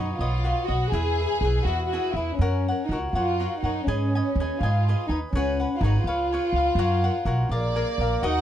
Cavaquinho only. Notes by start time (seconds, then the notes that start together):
Already playing: F#4
0.00 B4 C#5 D#5
0.21 F#4 B4 C#5 D#5
0.44 F#4 B4 C#5 D#5
0.68 B4 C#5 D#5
0.93 E4 G#4 B4 E5
1.20 G#4 B4 E5
1.43 E4 G#4 B4 E5
1.67 E4 G#4 B4 E5
1.93 E4 G#4 B4 E5
2.17 G#4 B4 E5
2.41 F#4 A#4 C#5 F#5
2.68 A#4 C#5 F#5
2.91 F#4 A#4 C#5 F#5
3.15 F#4 A#4 C#5 F#5
3.40 F#4 A#4 C#5 F#5
3.64 A#4 C#5 F#5
3.88 G#4 B4 D#5 G#5
4.15 B4 D#5 G#5
4.40 G#4 B4 D#5 G#5
4.63 G#4 B4 D#5 G#5
4.89 G#4 B4 D#5 G#5
5.10 B4 D#5 G#5
5.35 G#4 B4 C#5 F#5
5.60 B4 C#5 F#5
5.83 G#4 B4 C#5 F#5
6.07 G#4 B4 C#5 F5
6.33 G#4 B4 C#5 F5
6.56 B4 C#5 F5
6.79 F#4 A#4 C#5 F#5
7.04 A#4 C#5 F#5
7.26 F#4 A#4 C#5 F#5
7.51 G#4 A#4 D5 F5
7.76 G#4 A#4 D5 F5
8.00 A#4 D5 F5
8.23 F#4 A#4 D#5